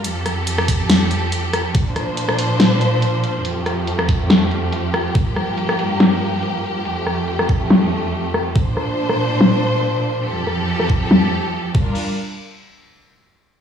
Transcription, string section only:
0.04 F2 F3 G4 A4
1.75 A#2 D4 C5
3.45 F2 A3 G4
5.15 G2 A#3
6.85 F2 A3
8.56 A#2 D4 C5
10.26 F2 F3 G4 A4
11.75 G3 D4 F4 A#4

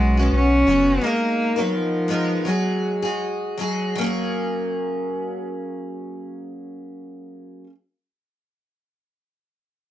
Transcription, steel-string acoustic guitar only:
Already playing: F#3 B3 C#4 F#4
0.17 B3 C#4 F#4
0.67 F#3 B3 C#4 F#4
1.01 G#3 D#4 A#4
1.56 G#3 B3 D#4 A#4
2.08 G#3 B3 D#4 A#4
2.45 F#3 G#3 F#4 G#4
3.03 G#3 F#4 G#4
3.57 F#3 G#3 F#4 G#4
3.96 F#3 A#3
4.01 C#4 G#4

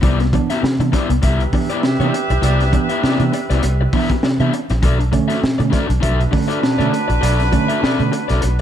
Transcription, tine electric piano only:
0.03 C3
0.33 E3 B3 D4
0.50 B3 D4
0.63 C3
0.80 E3 B3 D4
0.94 B3 D4
1.24 B3 D4
1.40 C3
1.53 E3 B3 D4
1.83 C3
2.00 E3 B3 D4
2.13 B3 D4
2.43 C3
2.73 E3 B3 D4
3.03 C3
3.20 E3 B3 D4
3.33 B3 D4
3.63 B3 D4
3.80 C3
3.93 E3 B3 D4
4.23 C3
4.40 E3 B3 D4
4.53 B3 D4
4.83 B2
5.12 D3 A3 C#4
5.29 A3 C#4
5.44 B2
5.60 D3 A3 C#4
5.73 A3 C#4
6.03 A3 C#4
6.20 B2
6.33 D3 A3 C#4
6.63 B2
6.80 D3 A3 C#4
6.93 A3 C#4
7.23 B2
7.53 D3 A3 C#4
7.71 A3 C#4
7.83 B2
8.00 D3 A3 C#4
8.13 A3 C#4
8.43 A3 C#4

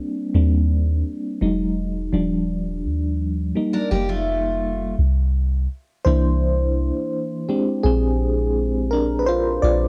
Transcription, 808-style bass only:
0.34 D#2
1.42 E1
2.13 D#1
2.84 D#2
3.92 F1
4.99 C2
6.06 C2
7.84 A#1
9.63 A#1

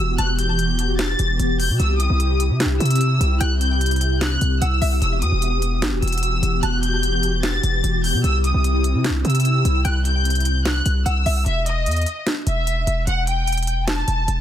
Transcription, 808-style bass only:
0.00 E1
0.19 E1
1.19 E1
1.39 E1
1.70 B2
1.80 C2
2.10 C2
2.50 C3
2.65 C2
2.80 C3
3.21 C2
3.41 C2
4.41 C2
4.62 C2
4.82 C2
5.02 E1
5.22 E2
5.32 E1
5.82 G1
5.92 E1
6.02 E1
6.43 E1
6.63 E1
7.63 E1
7.84 E1
8.14 B2
8.24 C2
8.54 C2
8.95 C3
9.10 C2
9.25 C3
9.65 C2
9.85 C2
10.86 C2
11.06 C2
11.26 C2
11.46 E1
11.86 E2
12.47 E1
12.87 E1
13.07 E1
14.08 E1
14.28 E1

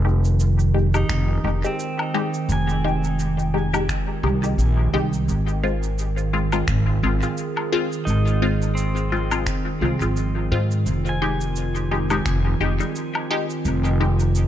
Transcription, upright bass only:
Already playing: F1
1.09 F1
1.44 F1
2.49 F1
4.23 C2
4.58 A#1
4.93 C2
5.28 G#1
6.68 G#1
7.03 G#1
8.07 G#1
9.81 C2
10.01 G#1
10.52 G#2
10.86 F1
12.26 F1
12.60 F1
13.65 F1

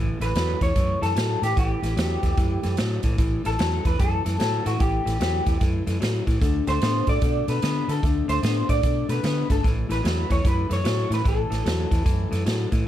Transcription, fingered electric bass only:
Already playing: A1
0.20 A1
0.35 E2
0.61 E2
0.76 F#2
1.02 F#2
1.16 A2
1.42 A2
1.57 A1
1.82 A1
1.97 E2
2.23 E2
2.38 F#2
2.65 F#2
2.80 A2
3.04 A2
3.19 A1
3.46 A1
3.60 E2
3.85 E2
4.00 F#2
4.26 F#2
4.40 A2
4.66 A2
4.80 A1
5.06 A1
5.21 E2
5.47 E2
5.61 F#2
5.87 F#2
6.02 A2
6.27 A2
6.42 D2
6.67 D2
6.82 A2
7.08 A2
7.22 B2
7.48 B2
7.63 D3
7.88 D3
8.03 D2
8.28 D2
8.43 A2
8.69 A2
8.84 B2
9.09 B2
9.24 D3
9.50 G1
9.64 A1
9.90 A1
10.05 E2
10.30 E2
10.45 F#2
10.71 F#2
10.85 A2
11.10 A2
11.26 A1
11.50 A1
11.66 E2
11.92 E2
12.06 F#2
12.32 F#2
12.46 A2
12.72 A2

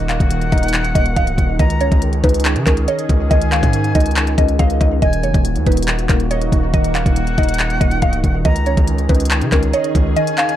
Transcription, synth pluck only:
0.09 F5
0.52 D#5
0.95 D#5
1.16 F5
1.59 D#5
1.81 C#5
2.24 B4
2.66 A#4
2.88 C#5
3.31 D#5
3.52 F5
3.95 D#5
4.38 D#5
4.59 F5
4.81 D#5
5.02 D#5
5.24 C#5
5.67 B4
6.09 A#4
6.31 C#5
6.74 D#5
6.95 F5
7.38 D#5
7.81 D#5
8.02 F5
8.45 D#5
8.67 C#5
9.09 B4
9.52 A#4
9.74 C#5
10.16 D#5
10.38 F5

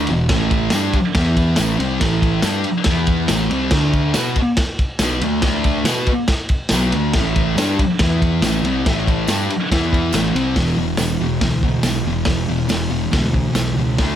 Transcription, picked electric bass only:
0.09 E1
0.29 A1
0.72 G2
1.15 E2
1.58 A1
1.79 C2
2.01 A1
2.44 G2
2.86 E2
3.29 A1
3.51 C2
3.72 D2
4.15 B2
4.99 B1
5.21 D2
5.43 D2
5.84 B2
6.71 B1
6.93 D2
7.15 A1
7.56 G2
8.00 E2
8.41 A1
8.63 C2
8.86 A1
9.28 G2
9.72 E2
10.13 A1
10.34 C2
10.56 E1
10.76 E1
10.98 E1
11.20 E1
11.42 D2
11.83 B1
12.05 E1
12.27 E1
12.48 E1
12.69 E1
12.90 E1
13.14 D2
13.55 B1
13.76 C#2
13.99 D2

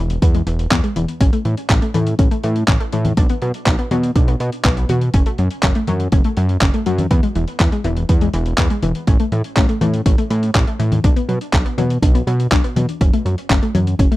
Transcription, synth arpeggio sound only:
0.22 B3
0.35 G#3
0.47 E3
0.71 B3
0.84 G#3
0.96 E3
1.21 C#4
1.33 A3
1.45 E3
1.70 C#4
1.82 A3
1.94 E3
2.19 C#4
2.31 A3
2.44 E3
2.68 C#4
2.80 A3
2.93 E3
3.17 D4
3.30 B3
3.42 F#3
3.66 D4
3.79 B3
3.91 F#3
4.16 D4
4.28 B3
4.40 B3
4.65 B3
4.77 B3
4.90 F#4
5.14 C#4
5.26 A3
5.39 F#3
5.63 C#4
5.76 A3
5.88 F#3
6.13 C#4
6.25 A3
6.37 F#3
6.62 C#4
6.74 A3
6.86 F#3
7.11 B3
7.23 G#3
7.36 E3
7.60 B3
7.72 G#3
7.85 E3
8.09 B3
8.22 G#3
8.34 E3
8.58 B3
8.71 G#3
8.83 E3
9.08 C#4
9.20 A3
9.32 E3
9.57 C#4
9.69 A3
9.81 E3
10.06 C#4
10.18 A3
10.30 E3
10.55 C#4
10.67 A3
10.80 E3
11.04 D4
11.16 B3
11.29 F#3
11.53 D4
11.66 B3
11.78 F#3
12.03 D4
12.15 B3
12.27 F#3
12.52 D4
12.64 B3
12.77 F#3
13.01 C#4
13.13 A3
13.26 F#3
13.50 C#4
13.62 A3
13.75 F#3
13.99 C#4
14.12 A3

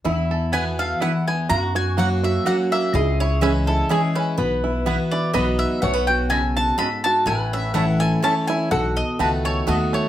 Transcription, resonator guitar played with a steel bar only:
0.04 E4
1.50 F#4
2.50 E4
2.95 G#4
4.38 B4
5.34 B4
5.83 C#5
7.27 B4
8.27 A4
8.72 A4

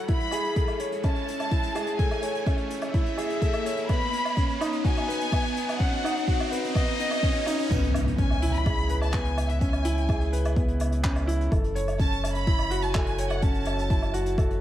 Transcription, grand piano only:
Already playing: C#4 E4 F#4 A4 C#5
0.08 E4
0.32 G#4
0.56 A4
0.80 C#5
1.04 C#4
1.51 E4
1.75 G#4
1.99 A4
2.22 C#5
2.46 C#4
2.94 E4
3.18 G#4
3.42 A4
3.66 C#5
3.89 B3
4.37 C#4
4.61 D#4
4.84 F#4
5.08 B4
5.32 B3
5.80 C#4
6.04 D#4
6.28 F#4
6.51 B4
6.75 B3
7.23 C#4
7.47 D#4
7.71 B3
8.18 C#4
8.42 E4
8.66 G#4
8.90 B4
9.13 B3
9.62 C#4
9.85 E4
10.09 G#4
10.33 B4
10.56 B3
11.04 C#4
11.27 E4
11.51 A4
11.75 C#5
11.99 C#4
12.47 E4
12.71 F#4
12.95 A4
13.19 C#5
13.43 C#4
13.90 E4
14.14 F#4
14.38 A4

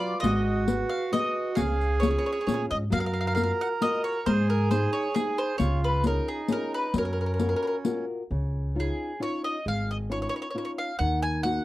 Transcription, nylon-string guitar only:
Already playing: F#3 B4 D5
0.23 G#3
0.67 F#4 G#4 B4
1.12 F#4 G#4 B4
1.56 C#3
2.02 C#4 F4 G#4
2.47 C#4 F4 G#4
2.90 F#3
3.35 F4 F#4 A#4
3.81 F4 F#4 A#4
4.27 G#3
4.71 D#4 G#4 C5
5.16 D#4 G#4 C5
5.59 C#3
6.04 C#4 F4 G#4
6.49 C#4 F4 G#4
6.95 F#3
7.40 F4 F#4 A#4
7.85 F4 F#4 A#4
8.31 C#3
8.75 C#4 D#4 F4
9.20 C#4 D#4 F4
9.66 G#3
10.10 C#4 D#4 F4
10.55 C#4 D#4 F4
11.00 D#3
11.44 A#3 D#4 F#4

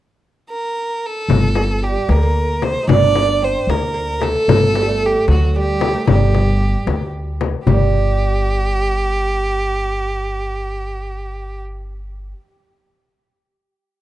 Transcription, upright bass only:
1.28 G1
2.09 D2
2.88 G1
3.67 D2
4.48 G1
5.28 D2
6.08 G1
6.87 D2
7.67 G1

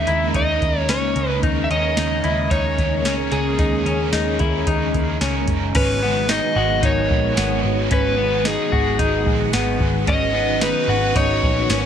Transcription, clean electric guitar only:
0.07 E4
0.34 D#4
0.89 C#4
1.43 D#4
1.71 C#4
1.98 D#4
2.24 E4
2.51 D#4
3.05 C#4
3.59 D#4
3.86 C#4
4.13 D#4
4.40 E4
4.67 D#4
5.21 C#4
5.75 C#4
6.03 B3
6.29 D#4
6.56 F#4
6.83 D#4
7.37 B3
7.91 C#4
8.18 B3
8.45 D#4
8.72 F#4
8.99 D#4
9.53 B3
10.08 C#4
10.35 B3
10.62 D#4
10.89 F#4
11.16 D#4
11.70 C#4

